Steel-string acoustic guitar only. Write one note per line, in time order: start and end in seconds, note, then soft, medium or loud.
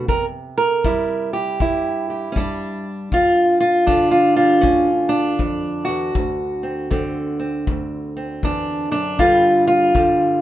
0.08 1.60 C3 medium
0.08 0.25 A#4 loud
0.58 1.33 A#4 loud
0.85 2.35 G3 medium
0.85 1.60 E4 medium
1.33 2.09 G4 medium
1.61 3.09 G2 medium
1.61 2.85 E4 medium
2.10 2.37 G4 medium
2.32 2.37 C#4 medium
2.37 3.09 G3 medium
2.37 3.13 D4 medium
3.13 4.64 G2 medium
3.13 3.59 F4 loud
3.61 4.10 F4 loud
3.87 6.89 D3 medium
3.87 4.89 D4 medium
4.11 4.35 F4 medium
4.36 4.61 G3 soft
4.36 5.39 F4 medium
4.61 5.38 D2 medium
4.61 5.11 C#4 medium
5.09 6.15 D4 loud
5.39 5.87 F2 medium
5.85 6.15 E2 medium
5.85 9.18 F#4 loud
6.15 7.66 D2 medium
6.63 6.90 C4 soft
6.91 9.18 D3 medium
6.91 7.38 C4 soft
7.40 8.16 C4 soft
7.67 8.43 D2 medium
8.17 9.17 C4 soft
8.44 8.91 E2 medium
8.44 8.90 D4 medium
8.91 9.19 F#2 medium
8.91 9.19 D4 loud
9.19 10.41 G2 medium
9.19 9.94 D3 medium
9.19 9.95 G3 medium
9.19 9.66 F4 loud
9.67 10.41 F4 loud
9.95 10.41 D3 medium
9.95 10.41 G3 soft